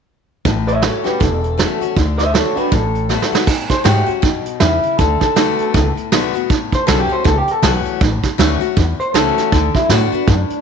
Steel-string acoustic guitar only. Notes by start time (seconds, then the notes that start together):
0.45 A2
0.82 E3 A3 C#4 F#4
1.04 C#4 F#4
1.20 E2
1.58 E3 A3 C#4 F#4
1.81 C#4 F#4
1.97 D3
2.34 D3 A3 B3 F#4
2.57 B3 F#4
2.72 A2
3.09 D3 A3 B3 F#4
3.32 B3 F#4
3.48 A2
3.84 E3 A3 C#4 F#4
4.06 C#4 F#4
4.22 B2
4.61 C#3
4.99 D3
5.36 D3 A3 B3 F#4
5.74 A2
6.12 D3 A3 B3 F#4
6.34 B3 F#4
6.50 A2
6.87 E3 A3 C#4 F#4
7.09 C#4 F#4
7.24 E2
7.63 E3 A3 C#4 F#4
8.01 A2
8.38 E3 A3 C#4 F#4
8.61 C#4 F#4
8.77 E2
9.14 E3 A3 C#4 F#4
9.52 D3
9.90 D3 A3 B3 F#4
10.12 B3 F#4
10.28 A2